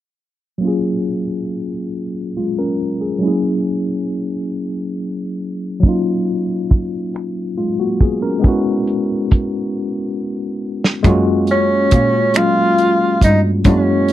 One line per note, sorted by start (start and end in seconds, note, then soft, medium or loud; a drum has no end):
0.58 3.17 F#3 medium
0.58 2.32 A#3 soft
0.63 2.33 C#4 soft
0.63 2.34 F4 soft
0.68 2.35 G#4 medium
2.37 2.57 G#3 soft
2.37 2.57 F4 soft
2.59 3.00 C#4 soft
2.59 2.99 A#4 medium
3.01 3.26 G#4 soft
3.19 5.77 F#3 medium
3.19 3.28 G#3 soft
3.23 5.79 C#4 medium
3.23 5.80 E4 medium
3.27 5.81 A#3 soft
3.27 5.82 G#4 medium
5.80 8.38 F#3 medium
5.80 7.53 A#3 medium
5.80 kick medium
5.80 closed hi-hat soft
5.84 7.54 C#4 medium
5.84 7.55 D#4 medium
5.89 7.56 F4 medium
6.26 closed hi-hat soft
6.70 kick medium
6.70 closed hi-hat medium
7.14 finger snap medium
7.14 closed hi-hat medium
7.57 7.78 G#3 soft
7.57 7.78 F4 soft
7.57 closed hi-hat soft
7.80 8.00 A#3 soft
7.80 8.00 F#4 medium
8.01 8.21 B3 soft
8.01 8.21 G#4 medium
8.01 kick medium
8.01 closed hi-hat medium
8.22 8.42 C#4 soft
8.22 8.64 A#4 medium
8.40 10.99 G#3 medium
8.40 11.00 B3 medium
8.44 11.01 C#4 medium
8.44 11.02 E4 medium
8.44 kick medium
8.44 closed hi-hat soft
8.48 11.03 F#4 medium
8.87 closed hi-hat soft
9.31 kick medium
9.31 closed hi-hat medium
10.84 snare medium
11.03 11.88 F#2 medium
11.03 11.99 G#3 medium
11.03 11.99 A#3 medium
11.03 12.00 C#4 medium
11.03 12.00 F4 medium
11.03 kick loud
11.03 closed hi-hat medium
11.07 12.01 F#4 medium
11.47 12.38 C#4 medium
11.47 closed hi-hat soft
11.91 13.22 A#2 medium
11.91 kick medium
11.91 closed hi-hat medium
12.34 13.29 G#3 medium
12.34 13.30 A#3 soft
12.34 13.30 C#4 soft
12.34 13.31 F4 soft
12.34 13.23 F4 medium
12.34 finger snap loud
12.34 closed hi-hat medium
12.38 13.31 F#3 soft
12.78 closed hi-hat soft
13.21 13.62 G2 medium
13.21 13.40 D#4 medium
13.21 kick medium
13.21 closed hi-hat medium
13.64 14.13 F#2 medium
13.64 14.13 G#3 medium
13.64 14.13 A#3 medium
13.64 14.13 C#4 medium
13.64 14.13 E4 medium
13.64 kick loud
13.64 closed hi-hat medium
13.69 14.13 F#4 medium
14.08 closed hi-hat soft